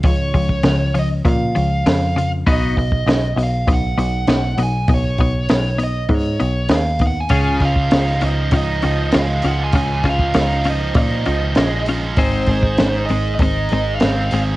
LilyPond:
<<
  \new Staff \with { instrumentName = "Lead electric guitar" } { \time 4/4 \key des \major \tempo 4 = 99 des''4. ees''8 f''4 f''8. r16 | ees''4. f''8 ges''4. aes''8 | des''4. ees''8 des''4 f''8 ges''16 aes''16~ | aes''8 f''4 ees''8 ees''4 f''8 ges''16 aes''16~ |
aes''8 f''4 ees''8 ees''4. r8 | c''4. ees''8 ees''4 f''8. r16 | }
  \new Staff \with { instrumentName = "Distorted electric guitar" } { \time 4/4 \key des \major r1 | r1 | r1 | des8 f'8 ees'8 f8 ees'8 f8 aes8 f'8 |
des8 f'8 ees'8 f8 ees'8 f8 aes8 f'8 | aes,8 aes'8 ees'8 aes8 ees'8 aes8 c'8 aes'8 | }
  \new Staff \with { instrumentName = "Clean electric guitar" } { \time 4/4 \key des \major <des f>8 <des f>8 <des f>8 <des f>8 <des f>8 <des f>8 <des f>8 <des f>8 | <ces' ees' ges'>8 <ces' ees'>8 <ces' ees'>8 <ces' ees'>8 <ces' ees'>8 <ces' ees'>8 <ces' ees'>8 <ces' ees'>8 | <ces' ees'>8 <ces' ees'>8 <ces' ees'>8 <ces' ees'>8 <ces' ees'>8 <ces' ees'>8 <ces' ees'>8 <ces' ees'>8 | <des' f' aes'>8 <des' f'>8 <des' f'>8 <des' f'>8 <des' f'>8 <des' f'>8 <des' f'>8 <des' f'>8 |
<des' f'>8 <des' f'>8 <des' f'>8 <des' f'>8 <des' f'>8 <des' f'>8 <des' f'>8 <des' f'>8 | <aes c' ees'>8 <aes c'>8 <aes c'>8 <aes c'>8 <aes c'>8 <aes c'>8 <aes c'>8 <aes c'>8 | }
  \new Staff \with { instrumentName = "Picked electric bass" } { \clef bass \time 4/4 \key des \major des,8 des,8 des,4 bes,8 des,8 f,4 | ces,8 ces,8 ces,8 ces,8 ces,8 ces,8 ces,8 ces,8 | ces,8 ces,8 ces,4 aes,8 ces,8 ees,4 | des,8 des,8 des,8 des,8 des,8 des,8 des,8 des,8 |
des,8 des,8 des,4 bes,8 des,8 bes,,4 | aes,,8 aes,,8 aes,,8 aes,,8 aes,,8 aes,,8 aes,,8 aes,,8 | }
  \new DrumStaff \with { instrumentName = "Drums" } \drummode { \time 4/4 <hho bd>8 <hho bd>16 bd16 <hho sn>8 hho8 <hho bd>8 hho8 <hho sn>8 hho8 | <hho bd>8 <hho bd>16 bd16 <hho sn>8 hho8 <hho bd>8 hho8 <hho sn>8 hho8 | <hho bd>8 <hho bd>8 <hho sn>8 hho8 <hho bd>8 hho8 <hho sn>8 <hho bd>8 | <hho bd>8 <hho bd>16 bd16 <hho sn>8 hho8 <hho bd>8 hho8 <hho sn>8 hho8 |
<hho bd>8 <hho bd>16 bd16 <hho sn>8 hho8 <hho bd>8 hho8 <hho sn>8 hho8 | <hho bd>8 <hho bd>16 bd16 <hho sn>8 hho8 <hho bd>8 hho8 <hho sn>8 hho8 | }
>>